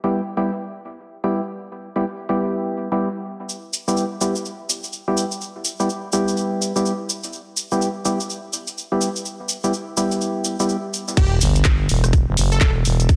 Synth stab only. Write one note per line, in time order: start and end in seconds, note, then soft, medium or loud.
0.04 0.21 G3 medium
0.04 0.21 B3 medium
0.04 0.21 E4 medium
0.04 0.21 G4 loud
0.37 0.51 G3 medium
0.37 0.51 B3 medium
0.37 0.51 E4 medium
0.37 0.51 G4 loud
1.24 1.41 G3 medium
1.24 1.41 B3 medium
1.24 1.41 E4 medium
1.24 1.41 G4 medium
1.96 2.05 G3 medium
1.96 2.05 B3 medium
1.96 2.05 E4 medium
1.96 2.05 G4 medium
2.29 2.88 G3 medium
2.29 2.88 B3 medium
2.29 2.88 E4 medium
2.29 2.88 G4 loud
2.92 3.09 G3 medium
2.92 3.09 B3 medium
2.92 3.09 E4 medium
2.92 3.09 G4 loud
3.88 4.05 G3 medium
3.88 4.05 B3 medium
3.88 4.05 E4 medium
3.88 4.05 G4 loud
4.21 4.35 G3 medium
4.21 4.35 B3 medium
4.21 4.35 E4 medium
4.21 4.35 G4 medium
5.08 5.25 G3 medium
5.08 5.25 B3 medium
5.08 5.25 E4 medium
5.08 5.25 G4 loud
5.80 5.89 G3 medium
5.80 5.89 B3 medium
5.80 5.89 E4 medium
5.80 5.89 G4 medium
6.13 6.72 G3 loud
6.13 6.72 B3 medium
6.13 6.72 E4 medium
6.13 6.72 G4 loud
6.76 6.93 G3 medium
6.76 6.93 B3 medium
6.76 6.93 E4 medium
6.76 6.93 G4 loud
7.72 7.89 G3 medium
7.72 7.89 B3 medium
7.72 7.89 E4 medium
7.72 7.89 G4 loud
8.05 8.19 G3 medium
8.05 8.19 B3 medium
8.05 8.19 E4 medium
8.05 8.19 G4 loud
8.92 9.09 G3 medium
8.92 9.09 B3 medium
8.92 9.09 E4 medium
8.92 9.09 G4 medium
9.64 9.73 G3 medium
9.64 9.73 B3 medium
9.64 9.73 E4 medium
9.64 9.73 G4 medium
9.97 10.56 G3 loud
9.97 10.56 B3 medium
9.97 10.56 E4 medium
9.97 10.56 G4 loud
10.60 10.77 G3 medium
10.60 10.77 B3 medium
10.60 10.77 E4 medium
10.60 10.77 G4 loud